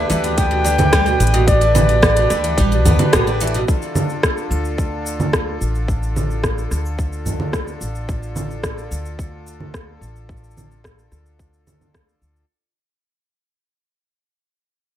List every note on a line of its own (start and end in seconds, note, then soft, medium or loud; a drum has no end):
0.00 3.64 D3 medium
0.00 3.65 D4 medium
0.00 3.64 G4 medium
0.00 3.65 B4 medium
0.10 1.15 D2 loud
0.10 0.22 E3 loud
0.10 closed hi-hat soft
0.10 shaker medium
0.24 0.32 B2 medium
0.24 closed hi-hat soft
0.24 shaker soft
0.37 0.46 B3 medium
0.37 1.49 G5 loud
0.37 kick medium
0.37 closed hi-hat medium
0.37 shaker soft
0.51 0.64 B2 medium
0.64 0.78 D3 medium
0.64 closed hi-hat soft
0.64 shaker medium
0.78 0.91 E3 medium
0.78 closed hi-hat soft
0.78 low conga medium
0.78 shaker soft
0.93 1.05 G3 loud
0.93 kick loud
0.93 cross-stick loud
0.93 closed hi-hat medium
0.93 shaker soft
1.06 1.19 B2 medium
1.06 shaker soft
1.20 2.25 A1 medium
1.20 1.33 B3 loud
1.20 closed hi-hat soft
1.20 shaker medium
1.27 closed hi-hat medium
1.34 1.46 B2 loud
1.34 closed hi-hat soft
1.34 shaker soft
1.47 1.60 B2 medium
1.47 3.13 D5 loud
1.47 kick loud
1.47 closed hi-hat medium
1.47 shaker soft
1.61 1.74 D3 medium
1.61 closed hi-hat soft
1.61 shaker soft
1.75 1.87 E3 loud
1.75 low conga medium
1.75 shaker medium
1.89 1.97 B2 medium
1.89 closed hi-hat soft
1.89 shaker soft
2.02 2.11 B3 medium
2.02 kick loud
2.02 cross-stick loud
2.02 shaker soft
2.16 2.29 B2 medium
2.16 closed hi-hat medium
2.16 shaker soft
2.30 2.57 D2 loud
2.30 2.43 D3 medium
2.30 cross-stick soft
2.30 closed hi-hat soft
2.30 shaker medium
2.44 2.57 E3 medium
2.44 closed hi-hat soft
2.44 shaker soft
2.58 2.86 A1 medium
2.58 2.70 G3 loud
2.58 kick medium
2.58 closed hi-hat medium
2.58 shaker soft
2.72 2.84 B2 medium
2.72 shaker soft
2.85 2.96 D2 loud
2.85 2.98 B3 loud
2.85 closed hi-hat soft
2.85 low conga medium
2.85 shaker medium
2.99 3.12 B2 loud
2.99 closed hi-hat soft
2.99 low conga medium
2.99 shaker soft
3.13 3.63 A1 medium
3.13 3.25 B2 medium
3.13 kick loud
3.13 cross-stick loud
3.13 closed hi-hat medium
3.13 shaker soft
3.27 3.39 D3 medium
3.27 shaker soft
3.41 3.53 E3 loud
3.41 closed hi-hat soft
3.41 shaker medium
3.47 closed hi-hat medium
3.54 3.62 B2 medium
3.54 closed hi-hat soft
3.54 shaker soft
3.68 12.45 D3 medium
3.68 12.45 D4 medium
3.68 12.45 F4 medium
3.68 12.45 A4 medium
3.68 kick loud
3.68 shaker soft
3.82 shaker soft
3.95 low conga medium
3.95 shaker medium
4.10 shaker soft
4.23 kick medium
4.23 cross-stick loud
4.23 shaker soft
4.38 shaker soft
4.51 5.55 D2 loud
4.51 shaker medium
4.65 shaker soft
4.78 kick medium
4.78 shaker soft
5.06 shaker medium
5.20 low conga medium
5.20 shaker soft
5.33 kick loud
5.33 cross-stick loud
5.33 shaker soft
5.61 6.66 A1 medium
5.61 shaker medium
5.75 shaker soft
5.88 kick medium
5.88 shaker soft
6.03 shaker soft
6.16 low conga medium
6.16 shaker medium
6.31 shaker soft
6.44 kick loud
6.44 cross-stick medium
6.44 shaker soft
6.58 shaker soft
6.71 7.76 D2 medium
6.71 cross-stick soft
6.71 shaker medium
6.86 shaker soft
6.99 kick medium
6.99 shaker soft
7.13 shaker soft
7.26 low conga medium
7.26 shaker medium
7.40 low conga medium
7.53 kick loud
7.53 cross-stick medium
7.53 shaker soft
7.68 shaker soft
7.81 8.86 A1 medium
7.81 shaker medium
7.95 shaker soft
8.09 kick loud
8.09 shaker soft
8.23 shaker soft
8.36 low conga medium
8.36 shaker medium
8.51 shaker soft
8.64 kick loud
8.64 cross-stick medium
8.64 shaker soft
8.78 shaker soft
8.91 9.96 D2 medium
8.91 shaker medium
9.06 shaker soft
9.19 kick medium
9.19 shaker soft
9.47 shaker medium
9.60 low conga medium
9.74 kick loud
9.74 cross-stick medium
9.74 shaker soft
10.01 11.06 A1 medium
10.01 shaker medium
10.16 shaker soft
10.29 kick loud
10.29 shaker soft
10.37 shaker soft
10.44 shaker soft
10.51 shaker soft
10.57 low conga medium
10.57 shaker medium
10.71 shaker soft
10.84 kick medium
10.84 cross-stick medium
10.84 shaker soft
10.99 shaker soft
11.12 12.16 D2 medium
11.12 cross-stick soft
11.12 shaker medium
11.26 shaker soft
11.39 kick medium
11.39 shaker soft
11.53 shaker soft
11.67 low conga medium
11.67 shaker medium
11.81 low conga medium
11.81 shaker soft
11.94 kick medium
11.94 cross-stick medium
11.94 shaker soft
12.09 shaker soft
12.22 12.42 D2 medium
12.22 shaker medium
12.36 shaker soft